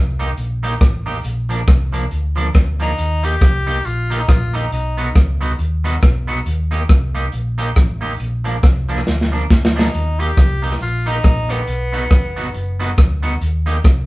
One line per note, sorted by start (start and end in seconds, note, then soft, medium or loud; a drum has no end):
0.00 0.31 C2 medium
0.19 0.29 A#3 medium
0.19 0.30 D#4 medium
0.19 0.30 G4 medium
0.19 closed hi-hat medium
0.37 0.74 A#1 loud
0.37 closed hi-hat medium
0.63 0.73 A#3 medium
0.63 0.73 D#4 loud
0.63 0.73 G4 loud
0.63 closed hi-hat loud
0.80 1.18 A1 medium
0.80 kick loud
0.80 cross-stick loud
0.80 closed hi-hat medium
1.06 1.16 A#3 medium
1.06 1.16 D#4 medium
1.06 1.17 G4 medium
1.06 open hi-hat medium
1.24 1.61 A#1 medium
1.24 closed hi-hat medium
1.49 1.59 F3 medium
1.49 1.60 A#3 medium
1.49 1.60 D4 medium
1.49 closed hi-hat medium
1.67 2.05 C2 medium
1.67 kick loud
1.67 cross-stick loud
1.67 closed hi-hat medium
1.93 2.03 F3 medium
1.93 2.03 A#3 medium
1.93 2.03 D4 medium
1.93 closed hi-hat medium
2.11 2.48 D2 loud
2.11 closed hi-hat medium
2.36 2.46 F3 medium
2.36 2.47 A#3 medium
2.36 2.47 D4 medium
2.36 closed hi-hat medium
2.54 2.92 D2 medium
2.54 kick loud
2.54 cross-stick loud
2.54 closed hi-hat medium
2.80 2.90 F3 medium
2.80 2.90 A#3 medium
2.80 2.90 D4 medium
2.80 3.26 D#4 medium
2.80 closed hi-hat medium
2.98 3.35 D#2 loud
2.98 closed hi-hat medium
3.23 3.33 A#3 medium
3.23 3.34 D#4 medium
3.23 3.34 G4 medium
3.23 3.87 G4 loud
3.23 closed hi-hat medium
3.41 3.78 C2 medium
3.41 kick loud
3.41 cross-stick loud
3.41 closed hi-hat medium
3.67 3.77 A#3 medium
3.67 3.77 D#4 medium
3.67 3.77 G4 medium
3.67 closed hi-hat medium
3.85 4.22 A#1 loud
3.85 4.22 F4 loud
3.85 closed hi-hat medium
4.10 4.20 A#3 medium
4.10 4.21 D#4 medium
4.10 4.21 G4 loud
4.10 closed hi-hat loud
4.20 4.30 D#4 medium
4.28 4.66 A#1 medium
4.28 4.57 F4 medium
4.28 kick loud
4.28 cross-stick loud
4.28 closed hi-hat medium
4.54 4.64 A#3 medium
4.54 4.64 D#4 medium
4.54 4.73 D#4 medium
4.54 4.64 G4 loud
4.54 closed hi-hat medium
4.72 5.09 B1 loud
4.72 5.13 D#4 medium
4.72 closed hi-hat medium
4.98 5.07 B3 medium
4.98 5.08 D#4 medium
4.98 5.08 F#4 medium
4.98 closed hi-hat medium
5.15 5.52 C#2 medium
5.15 kick loud
5.15 cross-stick loud
5.15 closed hi-hat medium
5.41 5.51 B3 medium
5.41 5.51 D#4 medium
5.41 5.51 F#4 loud
5.41 closed hi-hat medium
5.59 5.96 D#2 medium
5.59 closed hi-hat medium
5.84 5.94 B3 medium
5.84 5.95 D#4 medium
5.84 5.95 F#4 loud
5.84 closed hi-hat loud
6.02 6.40 B1 medium
6.02 kick loud
6.02 cross-stick loud
6.02 closed hi-hat medium
6.27 6.38 B3 medium
6.27 6.38 D#4 medium
6.27 6.38 F#4 medium
6.27 closed hi-hat medium
6.46 6.83 D#2 medium
6.46 closed hi-hat medium
6.71 6.81 A#3 medium
6.71 6.81 D#4 medium
6.71 6.82 G4 loud
6.71 closed hi-hat medium
6.89 7.26 C2 loud
6.89 kick loud
6.89 cross-stick loud
6.89 closed hi-hat medium
7.15 7.25 A#3 medium
7.15 7.25 D#4 medium
7.15 7.25 G4 medium
7.15 closed hi-hat medium
7.32 7.70 A#1 loud
7.32 closed hi-hat medium
7.58 7.68 A#3 loud
7.58 7.68 D#4 medium
7.58 7.69 G4 medium
7.58 closed hi-hat loud
7.76 8.14 A1 medium
7.76 kick loud
7.76 cross-stick loud
7.76 closed hi-hat medium
8.01 8.11 A#3 medium
8.01 8.12 D#4 medium
8.01 8.12 G4 medium
8.01 open hi-hat soft
8.20 8.57 A#1 loud
8.20 closed hi-hat medium
8.44 8.55 F3 medium
8.44 8.55 A#3 medium
8.44 8.55 D4 medium
8.44 closed hi-hat medium
8.63 9.00 C2 medium
8.63 kick loud
8.63 cross-stick loud
8.63 closed hi-hat medium
8.89 8.99 F3 medium
8.89 8.99 A#3 medium
8.89 8.99 D4 medium
8.89 closed hi-hat medium
8.98 cross-stick medium
9.07 9.44 D2 medium
9.07 snare medium
9.21 snare medium
9.32 9.42 F3 medium
9.32 9.42 A#3 loud
9.32 9.43 D4 medium
9.50 9.87 D2 medium
9.50 kick loud
9.50 snare medium
9.65 snare loud
9.76 9.86 F3 medium
9.76 9.86 A#3 medium
9.76 9.86 D4 medium
9.76 10.21 D#4 medium
9.76 snare medium
9.94 10.31 D#2 medium
9.94 closed hi-hat medium
10.19 10.29 A#3 medium
10.19 10.29 D#4 medium
10.19 10.63 G4 loud
10.19 10.30 G4 medium
10.19 closed hi-hat medium
10.37 10.74 C2 medium
10.37 kick loud
10.37 cross-stick loud
10.37 closed hi-hat medium
10.62 10.72 A#3 medium
10.62 10.73 D#4 medium
10.62 10.73 G4 medium
10.62 closed hi-hat medium
10.72 cross-stick medium
10.81 11.18 A#1 medium
10.81 11.09 F4 loud
10.81 closed hi-hat medium
11.06 11.16 A#3 medium
11.06 11.16 D#4 loud
11.06 11.52 D#4 loud
11.06 11.16 G4 loud
11.06 closed hi-hat loud
11.24 11.61 A#1 medium
11.24 kick loud
11.24 cross-stick loud
11.24 closed hi-hat medium
11.49 11.59 A#3 medium
11.49 12.80 B3 medium
11.49 11.60 D#4 medium
11.49 11.60 G4 medium
11.49 closed hi-hat medium
11.67 12.05 B1 loud
11.67 closed hi-hat medium
11.93 12.03 B3 medium
11.93 12.03 D#4 medium
11.93 12.03 F#4 medium
11.93 closed hi-hat medium
12.10 12.48 G#1 loud
12.10 kick loud
12.10 cross-stick loud
12.10 closed hi-hat medium
12.36 12.46 B3 medium
12.36 12.47 D#4 medium
12.36 12.47 F#4 medium
12.36 closed hi-hat medium
12.54 12.91 F#1 medium
12.54 closed hi-hat medium
12.80 12.90 B3 medium
12.80 12.90 D#4 medium
12.80 12.90 F#4 loud
12.80 closed hi-hat loud
12.98 13.35 D2 medium
12.98 kick loud
12.98 cross-stick loud
12.98 closed hi-hat medium
13.23 13.33 B3 medium
13.23 13.33 D#4 medium
13.23 13.33 F#4 medium
13.23 closed hi-hat medium
13.41 13.78 D#2 loud
13.41 closed hi-hat medium
13.66 13.76 A#3 medium
13.66 13.76 D#4 medium
13.66 13.77 G4 medium
13.66 closed hi-hat medium
13.84 14.06 C2 medium
13.84 kick loud
13.84 cross-stick loud
13.84 closed hi-hat medium